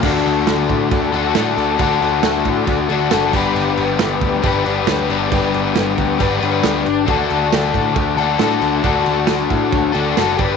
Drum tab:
CC |xxxxxxxx|xxxxxxxx|xxxxxxxx|xxxxxxxx|
SD |--o---o-|--o---o-|--o---o-|--o---o-|
BD |o--oo---|o--oo--o|---oo---|o--oo---|

CC |xxxxxxxx|xxxxxxxx|
SD |--o---o-|--o---o-|
BD |o--oo---|o--oo--o|